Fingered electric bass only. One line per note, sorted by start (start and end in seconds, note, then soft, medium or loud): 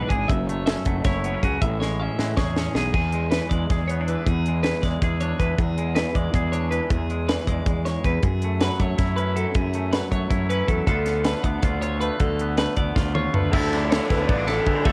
0.10 0.25 G#1 medium
0.29 0.75 F#1 medium
0.86 1.01 F#1 medium
1.05 1.35 F#1 medium
1.42 1.58 C#2 medium
1.62 2.07 A1 loud
2.18 2.33 A2 medium
2.37 2.67 E2 medium
2.75 2.90 B1 medium
2.94 3.39 E2 medium
3.51 3.66 E2 medium
3.70 4.15 E2 medium
4.27 4.72 E2 medium
4.83 4.98 E2 medium
5.02 5.32 E2 medium
5.40 5.55 E2 medium
5.58 6.04 E2 loud
6.15 6.31 E2 medium
6.33 6.79 E2 loud
6.90 7.36 E2 medium
7.47 7.63 E2 medium
7.66 7.97 E2 medium
8.04 8.20 E2 medium
8.23 8.69 F#2 medium
8.79 8.95 F#2 medium
8.98 9.44 F#2 medium
9.55 10.01 F#2 medium
10.12 10.27 F#2 medium
10.31 10.61 F#2 medium
10.68 10.84 E2 medium
10.87 11.33 D2 loud
11.44 11.59 D2 medium
11.63 12.09 D2 loud
12.20 12.66 D2 medium
12.77 12.92 D2 medium
12.96 13.27 D2 loud
13.34 13.49 D2 medium
13.53 13.99 D2 loud
14.10 14.25 D2 medium
14.29 14.59 A1 medium
14.66 14.81 D3 medium
14.85 14.92 D2 medium